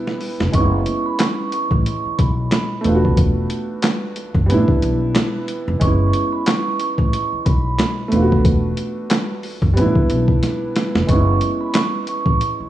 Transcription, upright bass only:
0.40 F1
0.54 F#1
1.71 A1
2.05 muted upright bass stroke
2.19 B1
2.85 E1
4.35 F#1
4.50 A1
4.68 muted upright bass stroke
4.83 B1
5.68 F1
5.81 F#1
6.98 A1
7.33 muted upright bass stroke
7.46 B1
8.12 E1
9.62 F#1
9.77 A1
9.96 muted upright bass stroke
10.10 B1
10.95 F1
11.09 F#1
12.26 A1
12.60 muted upright bass stroke

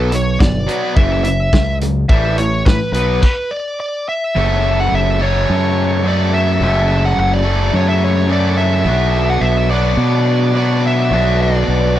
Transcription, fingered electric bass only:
Already playing: B1
0.40 G1
0.96 F#1
1.53 C#2
2.09 A1
2.66 A2
2.92 B1
4.36 F#1
4.92 F#1
5.50 F#2
6.61 F#1
7.18 F#1
7.73 F#2
8.85 B1
9.41 B1
9.97 B2
11.11 B1
11.68 B1

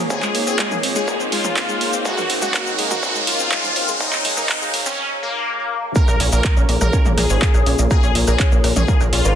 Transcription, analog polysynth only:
0.10 G#4
0.47 G#4
0.96 G#4
1.32 F4
2.05 F#4
2.42 F#4
2.91 F#4
3.27 F4
4.01 D#4
4.37 D#4
4.86 C#4
5.23 A#3
5.96 A#4
6.32 A#4
6.81 A#4
7.18 G#4
7.91 G#4
8.28 G#4
8.76 G#4
9.13 F4

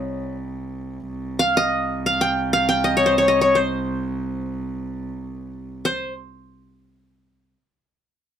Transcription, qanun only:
Already playing: C#5 D#5
1.39 F5
1.57 D#5
2.06 F5
2.21 G5
2.53 F5
2.69 G5
2.84 D#5
2.97 C#5
3.06 C5
3.18 C#5
3.28 D#5
3.41 C#5
3.55 C5
5.85 C5

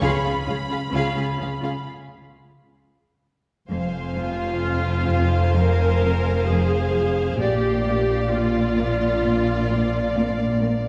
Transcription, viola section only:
0.00 C#4 F4
0.23 C#4 F4
0.47 C#4 F4
0.69 C#4 F4
0.92 C#4 F4
1.15 C#4 F4
1.38 C#4 F4
1.62 C#4 F4
4.16 F4
5.55 A#4
6.48 G#4
7.40 G4
8.32 F4

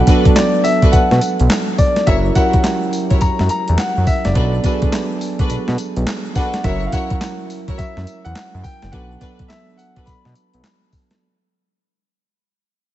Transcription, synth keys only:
Already playing: F#3 B3 D4 A4
0.08 F#3 B3 D4 A4
2.07 F#3 C#4 E4 A#4
2.35 F#3 C#4 E4 G4
2.43 A#4
4.36 F#3 B3 D4 A4
4.64 F#3 B3 D4 G#4
4.72 A4
6.64 F#3 C#4 E4 A#4
6.93 F#3 C#4 E4 A#4
8.93 F#3 B3 D4 A4
9.21 F#3 B3 D4 A4

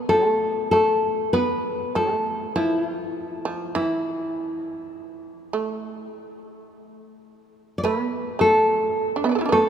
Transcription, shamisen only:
0.09 A3
0.73 A3
1.34 B3
1.95 A3
2.56 F3
3.45 F3
3.75 E3
5.53 A3
7.85 B3
8.39 A3
9.16 D4
9.24 B3 E5
9.29 B4 D5
9.35 F4 A4
9.41 E4
9.46 B3 D4
9.52 A3

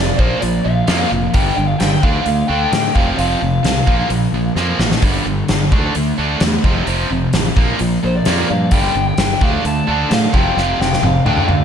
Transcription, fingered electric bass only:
Already playing: F1
0.19 A#1
0.43 A#1
0.66 A#1
0.88 F2
1.12 F1
1.34 G1
1.58 G1
1.81 G1
2.04 D2
2.26 D2
2.49 D2
2.72 A2
2.95 F1
3.19 F1
3.42 F1
3.64 C2
3.88 A#1
4.10 A#1
4.32 A#1
4.56 F2
4.79 A1
5.02 G1
5.26 G1
5.49 G1
5.72 D2
5.96 D2
6.18 D2
6.41 E2
6.64 F1
6.87 F1
7.11 F1
7.34 A1
7.57 A#1
7.81 A#1
8.04 A#1
8.27 F2
8.50 G2
8.72 G1
8.95 G1
9.18 G1
9.41 D2
9.65 D2
9.88 D2
10.11 A2
10.34 F1
10.57 F1
10.79 F1
11.02 F1
11.26 D2
11.49 D2

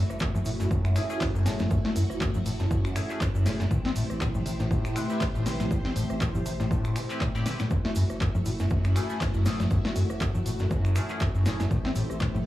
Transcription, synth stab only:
0.96 A3 C#4 E4 G#4
1.10 A3 C#4 E4 G#4
1.46 A3 C#4 E4 G#4
2.96 A3 C#4 E4 G#4
3.10 A3 C#4 E4 G#4
3.46 A3 C#4 E4 G#4
4.96 C4 E4 G4 B4
5.10 C4 E4 G4 B4
5.46 C4 E4 G4 B4
7.10 C4 E4 G4 B4
7.35 C4 E4 G4 D5
7.46 C4 E4 G4 B4
8.96 A3 C#4 E4 G#4
9.10 A3 C#4 E4 G#4
9.46 A3 C#4 E4 G#4
10.96 A3 C#4 E4 G#4
11.10 A3 C#4 E4 G#4
11.46 A3 C#4 E4 G#4

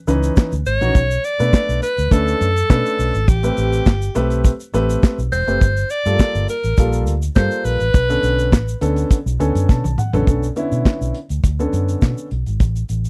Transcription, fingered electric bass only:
0.08 C#2
0.52 D2
0.66 G#1
0.82 A#1
0.95 B1
1.40 B2
1.69 B1
1.98 D2
2.11 D2
2.41 F#2
2.70 B2
2.99 B1
3.15 G#1
3.28 A1
3.58 A1
3.86 G1
4.16 B1
4.74 A1
5.18 B1
5.32 E1
5.47 F#1
5.61 G1
6.06 G2
6.35 G1
6.64 A1
6.78 A#1
7.07 D2
7.36 G2
7.65 A#1
7.81 A1
7.94 B1
8.23 B1
8.53 A1
8.82 D2
9.26 B1
9.40 D2
9.55 F#2
9.69 B2
9.84 B1
10.13 A1
10.27 B1
10.72 B2
11.01 B1
11.30 D2
11.44 D2
11.73 F#2
12.02 B2
12.32 B1
12.47 G#1
12.60 A1
12.90 A1

